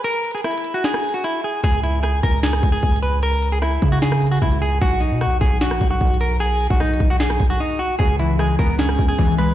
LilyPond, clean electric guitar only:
\new Staff \with { instrumentName = "Clean electric guitar" } { \time 4/4 \key cis \dorian \tempo 4 = 151 ais'8. gis'16 e'8. fis'16 gis'8. fis'16 e'8 gis'8 | gis'8 e'8 gis'8 ais'8 gis'8. gis'8. b'8 | ais'8. gis'16 e'8. fis'16 gis'8. fis'16 e'8 gis'8 | fis'8 dis'8 fis'8 gis'8 fis'8. fis'8. ais'8 |
gis'8. fis'16 dis'8. fis'16 gis'8. fis'16 dis'8 fis'8 | gis'8 e'8 gis'8 ais'8 gis'8. gis'8. b'8 | }